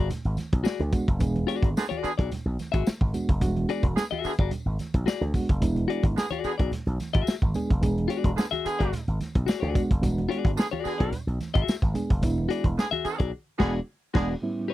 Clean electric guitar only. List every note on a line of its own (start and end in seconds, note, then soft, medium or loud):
0.64 0.81 F#4 medium
0.64 0.81 G#4 medium
0.64 0.82 D5 loud
1.47 1.68 F#4 medium
1.47 1.69 G#4 medium
1.47 1.69 D5 loud
1.89 2.10 F#4 medium
1.89 2.10 G#4 medium
1.89 2.09 D5 medium
2.18 2.30 F#4 medium
2.18 2.30 G#4 medium
2.18 2.29 D5 medium
2.72 2.88 F#4 medium
2.72 2.88 G#4 medium
2.72 2.87 E5 loud
3.69 3.85 F#4 medium
3.69 3.85 G#4 loud
3.69 3.86 D5 medium
4.11 4.32 F#4 medium
4.11 4.31 G#4 medium
4.11 4.31 E5 medium
4.39 4.51 F#4 soft
4.39 4.51 G#4 medium
4.39 4.50 D5 medium
5.06 5.22 F#4 medium
5.06 5.23 G#4 loud
5.06 5.23 D5 loud
5.88 6.05 F#4 loud
5.88 6.05 G#4 loud
5.88 6.06 D5 loud
6.31 6.52 F#4 medium
6.31 6.51 G#4 medium
6.31 6.51 D5 medium
6.58 6.71 F#4 soft
6.58 6.70 G#4 medium
6.58 6.70 D5 medium
7.13 7.34 F#4 medium
7.13 7.34 G#4 medium
7.13 7.34 E5 medium
8.08 8.30 F#4 medium
8.08 8.30 G#4 medium
8.08 8.31 D5 medium
8.51 8.67 F#4 medium
8.51 8.67 G#4 medium
8.51 8.66 E5 medium
8.79 8.91 F#4 soft
8.79 8.91 G#4 medium
8.79 8.91 D5 medium
9.46 9.60 F#4 medium
9.46 9.60 G#4 medium
9.46 9.59 D5 medium
9.60 9.82 F#4 medium
9.60 9.81 G#4 medium
9.60 9.81 D5 medium
10.29 10.50 F#4 loud
10.29 10.50 G#4 loud
10.29 10.51 D5 loud
10.71 10.92 F#4 medium
10.71 10.92 G#4 medium
10.71 10.92 D5 loud
10.98 11.11 F#4 soft
10.98 11.11 G#4 medium
10.98 11.10 D5 medium
11.54 11.75 F#4 medium
11.54 11.74 G#4 medium
11.54 11.74 E5 loud
12.49 12.65 F#4 medium
12.49 12.66 G#4 loud
12.49 12.67 D5 loud
12.91 13.07 F#4 medium
12.91 13.07 G#4 medium
12.91 13.06 E5 medium
13.19 13.31 F#4 medium
13.19 13.31 G#4 medium
13.19 13.30 D5 medium
13.59 13.78 F#4 loud
13.59 13.79 G#4 loud
13.59 13.80 D5 loud
14.14 14.33 F#4 loud
14.14 14.34 G#4 loud
14.14 14.35 D5 loud
14.68 14.74 G4 medium
14.68 14.74 B4 medium
14.68 14.74 C#5 medium